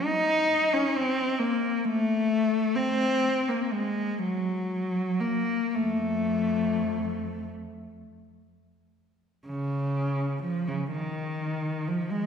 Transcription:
0, 0, Header, 1, 2, 480
1, 0, Start_track
1, 0, Tempo, 906344
1, 17, Time_signature, 6, 3, 24, 8
1, 1456, Tempo, 975610
1, 2416, Tempo, 1030928
1, 2896, Tempo, 1169591
1, 3376, Tempo, 1217039
1, 3856, Tempo, 1354402
1, 4336, Tempo, 953895
1, 5740, End_track
2, 0, Start_track
2, 0, Title_t, "Cello"
2, 0, Program_c, 0, 42
2, 15, Note_on_c, 0, 63, 91
2, 378, Note_off_c, 0, 63, 0
2, 388, Note_on_c, 0, 61, 78
2, 502, Note_off_c, 0, 61, 0
2, 511, Note_on_c, 0, 60, 82
2, 736, Note_on_c, 0, 58, 77
2, 743, Note_off_c, 0, 60, 0
2, 975, Note_on_c, 0, 57, 89
2, 977, Note_off_c, 0, 58, 0
2, 1456, Note_off_c, 0, 57, 0
2, 1456, Note_on_c, 0, 60, 93
2, 1813, Note_off_c, 0, 60, 0
2, 1817, Note_on_c, 0, 58, 70
2, 1933, Note_on_c, 0, 56, 75
2, 1939, Note_off_c, 0, 58, 0
2, 2178, Note_off_c, 0, 56, 0
2, 2182, Note_on_c, 0, 54, 75
2, 2639, Note_off_c, 0, 54, 0
2, 2649, Note_on_c, 0, 58, 74
2, 2898, Note_off_c, 0, 58, 0
2, 2899, Note_on_c, 0, 41, 57
2, 2899, Note_on_c, 0, 57, 72
2, 3594, Note_off_c, 0, 41, 0
2, 3610, Note_off_c, 0, 57, 0
2, 4335, Note_on_c, 0, 49, 74
2, 4793, Note_off_c, 0, 49, 0
2, 4815, Note_on_c, 0, 53, 66
2, 4933, Note_off_c, 0, 53, 0
2, 4943, Note_on_c, 0, 49, 61
2, 5061, Note_off_c, 0, 49, 0
2, 5064, Note_on_c, 0, 51, 65
2, 5535, Note_off_c, 0, 51, 0
2, 5544, Note_on_c, 0, 53, 70
2, 5660, Note_off_c, 0, 53, 0
2, 5662, Note_on_c, 0, 56, 68
2, 5740, Note_off_c, 0, 56, 0
2, 5740, End_track
0, 0, End_of_file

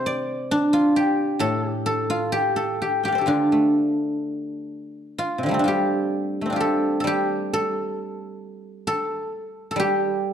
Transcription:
0, 0, Header, 1, 2, 480
1, 0, Start_track
1, 0, Tempo, 911854
1, 742, Time_signature, 2, 2, 24, 8
1, 1228, Tempo, 947867
1, 3628, Tempo, 911854
1, 5345, End_track
2, 0, Start_track
2, 0, Title_t, "Guzheng"
2, 0, Program_c, 0, 107
2, 0, Note_on_c, 0, 48, 39
2, 0, Note_on_c, 0, 67, 62
2, 0, Note_on_c, 0, 72, 73
2, 32, Note_on_c, 0, 74, 72
2, 214, Note_off_c, 0, 67, 0
2, 270, Note_on_c, 0, 62, 67
2, 384, Note_on_c, 0, 65, 64
2, 507, Note_on_c, 0, 67, 65
2, 734, Note_on_c, 0, 45, 46
2, 735, Note_off_c, 0, 48, 0
2, 738, Note_on_c, 0, 69, 80
2, 885, Note_off_c, 0, 67, 0
2, 885, Note_off_c, 0, 69, 0
2, 885, Note_on_c, 0, 67, 80
2, 960, Note_off_c, 0, 72, 0
2, 977, Note_off_c, 0, 67, 0
2, 979, Note_on_c, 0, 69, 71
2, 1004, Note_off_c, 0, 74, 0
2, 1102, Note_off_c, 0, 65, 0
2, 1104, Note_on_c, 0, 65, 63
2, 1222, Note_on_c, 0, 67, 72
2, 1342, Note_off_c, 0, 69, 0
2, 1344, Note_on_c, 0, 69, 59
2, 1471, Note_off_c, 0, 67, 0
2, 1473, Note_on_c, 0, 67, 60
2, 1583, Note_on_c, 0, 79, 25
2, 1588, Note_off_c, 0, 67, 0
2, 1590, Note_on_c, 0, 67, 59
2, 1605, Note_on_c, 0, 77, 28
2, 1628, Note_on_c, 0, 74, 30
2, 1642, Note_on_c, 0, 72, 32
2, 1655, Note_off_c, 0, 69, 0
2, 1657, Note_on_c, 0, 69, 35
2, 1672, Note_off_c, 0, 67, 0
2, 1674, Note_on_c, 0, 67, 35
2, 1694, Note_off_c, 0, 65, 0
2, 1696, Note_on_c, 0, 65, 41
2, 1702, Note_on_c, 0, 50, 41
2, 1703, Note_off_c, 0, 45, 0
2, 1704, Note_off_c, 0, 62, 0
2, 1706, Note_on_c, 0, 62, 59
2, 1830, Note_on_c, 0, 57, 33
2, 2370, Note_off_c, 0, 79, 0
2, 2450, Note_off_c, 0, 77, 0
2, 2563, Note_off_c, 0, 74, 0
2, 2646, Note_off_c, 0, 72, 0
2, 2670, Note_off_c, 0, 65, 0
2, 2672, Note_on_c, 0, 65, 59
2, 2769, Note_off_c, 0, 69, 0
2, 2773, Note_on_c, 0, 48, 27
2, 2791, Note_off_c, 0, 50, 0
2, 2797, Note_on_c, 0, 50, 31
2, 2802, Note_off_c, 0, 57, 0
2, 2812, Note_on_c, 0, 53, 33
2, 2824, Note_on_c, 0, 55, 38
2, 2838, Note_on_c, 0, 57, 39
2, 2851, Note_on_c, 0, 60, 42
2, 2866, Note_off_c, 0, 67, 0
2, 2877, Note_off_c, 0, 62, 0
2, 2879, Note_on_c, 0, 62, 44
2, 2882, Note_off_c, 0, 50, 0
2, 2900, Note_off_c, 0, 65, 0
2, 2902, Note_on_c, 0, 65, 44
2, 2908, Note_off_c, 0, 55, 0
2, 2909, Note_off_c, 0, 48, 0
2, 2910, Note_on_c, 0, 55, 39
2, 2921, Note_on_c, 0, 67, 63
2, 2940, Note_off_c, 0, 53, 0
2, 3292, Note_off_c, 0, 57, 0
2, 3295, Note_on_c, 0, 57, 28
2, 3314, Note_off_c, 0, 60, 0
2, 3316, Note_on_c, 0, 60, 30
2, 3335, Note_off_c, 0, 62, 0
2, 3337, Note_on_c, 0, 62, 34
2, 3348, Note_off_c, 0, 65, 0
2, 3350, Note_on_c, 0, 65, 40
2, 3367, Note_off_c, 0, 67, 0
2, 3369, Note_on_c, 0, 67, 44
2, 3391, Note_on_c, 0, 69, 63
2, 3590, Note_off_c, 0, 69, 0
2, 3592, Note_on_c, 0, 69, 54
2, 3605, Note_off_c, 0, 55, 0
2, 3611, Note_on_c, 0, 55, 42
2, 3625, Note_off_c, 0, 67, 0
2, 3628, Note_on_c, 0, 67, 72
2, 3869, Note_off_c, 0, 69, 0
2, 3871, Note_on_c, 0, 69, 71
2, 4573, Note_off_c, 0, 69, 0
2, 4575, Note_on_c, 0, 69, 73
2, 4670, Note_off_c, 0, 65, 0
2, 4799, Note_off_c, 0, 62, 0
2, 4867, Note_off_c, 0, 67, 0
2, 4885, Note_off_c, 0, 60, 0
2, 5014, Note_off_c, 0, 69, 0
2, 5016, Note_on_c, 0, 69, 52
2, 5032, Note_off_c, 0, 57, 0
2, 5036, Note_off_c, 0, 55, 0
2, 5042, Note_on_c, 0, 55, 52
2, 5062, Note_on_c, 0, 67, 77
2, 5345, Note_off_c, 0, 55, 0
2, 5345, Note_off_c, 0, 67, 0
2, 5345, Note_off_c, 0, 69, 0
2, 5345, End_track
0, 0, End_of_file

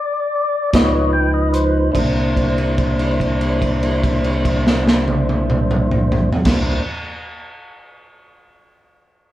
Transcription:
0, 0, Header, 1, 4, 480
1, 0, Start_track
1, 0, Tempo, 768246
1, 706, Tempo, 814111
1, 1186, Time_signature, 12, 3, 24, 8
1, 1186, Tempo, 835655
1, 5424, End_track
2, 0, Start_track
2, 0, Title_t, "Tonewheel organ"
2, 0, Program_c, 0, 16
2, 0, Note_on_c, 0, 74, 101
2, 442, Note_off_c, 0, 74, 0
2, 457, Note_on_c, 0, 53, 59
2, 464, Note_on_c, 0, 63, 61
2, 465, Note_on_c, 0, 71, 53
2, 468, Note_on_c, 0, 75, 89
2, 471, Note_on_c, 0, 73, 104
2, 553, Note_on_c, 0, 74, 73
2, 575, Note_off_c, 0, 75, 0
2, 582, Note_on_c, 0, 75, 98
2, 583, Note_off_c, 0, 74, 0
2, 697, Note_off_c, 0, 75, 0
2, 704, Note_off_c, 0, 73, 0
2, 706, Note_on_c, 0, 79, 93
2, 815, Note_off_c, 0, 79, 0
2, 829, Note_on_c, 0, 75, 84
2, 937, Note_off_c, 0, 75, 0
2, 945, Note_on_c, 0, 72, 101
2, 1161, Note_off_c, 0, 53, 0
2, 1164, Note_off_c, 0, 63, 0
2, 1164, Note_off_c, 0, 71, 0
2, 1164, Note_off_c, 0, 72, 0
2, 1171, Note_on_c, 0, 72, 68
2, 1172, Note_on_c, 0, 62, 65
2, 1176, Note_on_c, 0, 64, 65
2, 1177, Note_on_c, 0, 58, 68
2, 3689, Note_off_c, 0, 62, 0
2, 3689, Note_off_c, 0, 72, 0
2, 3691, Note_off_c, 0, 64, 0
2, 3692, Note_off_c, 0, 58, 0
2, 3774, Note_on_c, 0, 64, 63
2, 3774, Note_on_c, 0, 72, 59
2, 3775, Note_on_c, 0, 58, 60
2, 3775, Note_on_c, 0, 62, 61
2, 3989, Note_off_c, 0, 62, 0
2, 3989, Note_off_c, 0, 64, 0
2, 3989, Note_off_c, 0, 72, 0
2, 3990, Note_off_c, 0, 58, 0
2, 5424, End_track
3, 0, Start_track
3, 0, Title_t, "Analog synth bass"
3, 0, Program_c, 1, 38
3, 457, Note_on_c, 1, 37, 97
3, 1161, Note_off_c, 1, 37, 0
3, 1190, Note_on_c, 1, 36, 92
3, 3699, Note_off_c, 1, 36, 0
3, 3776, Note_on_c, 1, 36, 91
3, 3977, Note_off_c, 1, 36, 0
3, 5424, End_track
4, 0, Start_track
4, 0, Title_t, "Drums"
4, 459, Note_on_c, 9, 42, 77
4, 460, Note_on_c, 9, 36, 89
4, 468, Note_on_c, 9, 38, 107
4, 521, Note_off_c, 9, 42, 0
4, 522, Note_off_c, 9, 36, 0
4, 531, Note_off_c, 9, 38, 0
4, 946, Note_on_c, 9, 42, 52
4, 1005, Note_off_c, 9, 42, 0
4, 1188, Note_on_c, 9, 36, 102
4, 1190, Note_on_c, 9, 49, 80
4, 1245, Note_off_c, 9, 36, 0
4, 1248, Note_off_c, 9, 49, 0
4, 1428, Note_on_c, 9, 36, 60
4, 1430, Note_on_c, 9, 49, 42
4, 1486, Note_off_c, 9, 36, 0
4, 1488, Note_off_c, 9, 49, 0
4, 1551, Note_on_c, 9, 57, 41
4, 1608, Note_off_c, 9, 57, 0
4, 1665, Note_on_c, 9, 49, 41
4, 1667, Note_on_c, 9, 36, 55
4, 1723, Note_off_c, 9, 49, 0
4, 1724, Note_off_c, 9, 36, 0
4, 1788, Note_on_c, 9, 57, 43
4, 1845, Note_off_c, 9, 57, 0
4, 1908, Note_on_c, 9, 36, 55
4, 1912, Note_on_c, 9, 49, 42
4, 1965, Note_off_c, 9, 36, 0
4, 1969, Note_off_c, 9, 49, 0
4, 2028, Note_on_c, 9, 57, 45
4, 2085, Note_off_c, 9, 57, 0
4, 2147, Note_on_c, 9, 36, 60
4, 2148, Note_on_c, 9, 49, 48
4, 2205, Note_off_c, 9, 36, 0
4, 2205, Note_off_c, 9, 49, 0
4, 2268, Note_on_c, 9, 57, 45
4, 2325, Note_off_c, 9, 57, 0
4, 2387, Note_on_c, 9, 36, 59
4, 2388, Note_on_c, 9, 49, 48
4, 2444, Note_off_c, 9, 36, 0
4, 2445, Note_off_c, 9, 49, 0
4, 2506, Note_on_c, 9, 57, 48
4, 2564, Note_off_c, 9, 57, 0
4, 2626, Note_on_c, 9, 36, 65
4, 2627, Note_on_c, 9, 49, 53
4, 2683, Note_off_c, 9, 36, 0
4, 2684, Note_off_c, 9, 49, 0
4, 2751, Note_on_c, 9, 38, 81
4, 2808, Note_off_c, 9, 38, 0
4, 2870, Note_on_c, 9, 38, 84
4, 2927, Note_off_c, 9, 38, 0
4, 2986, Note_on_c, 9, 48, 84
4, 3044, Note_off_c, 9, 48, 0
4, 3109, Note_on_c, 9, 48, 85
4, 3167, Note_off_c, 9, 48, 0
4, 3227, Note_on_c, 9, 47, 86
4, 3284, Note_off_c, 9, 47, 0
4, 3348, Note_on_c, 9, 47, 90
4, 3405, Note_off_c, 9, 47, 0
4, 3467, Note_on_c, 9, 45, 87
4, 3524, Note_off_c, 9, 45, 0
4, 3584, Note_on_c, 9, 45, 101
4, 3641, Note_off_c, 9, 45, 0
4, 3703, Note_on_c, 9, 43, 99
4, 3760, Note_off_c, 9, 43, 0
4, 3774, Note_on_c, 9, 49, 93
4, 3777, Note_on_c, 9, 36, 101
4, 3783, Note_on_c, 9, 38, 89
4, 3831, Note_off_c, 9, 49, 0
4, 3834, Note_off_c, 9, 36, 0
4, 3840, Note_off_c, 9, 38, 0
4, 5424, End_track
0, 0, End_of_file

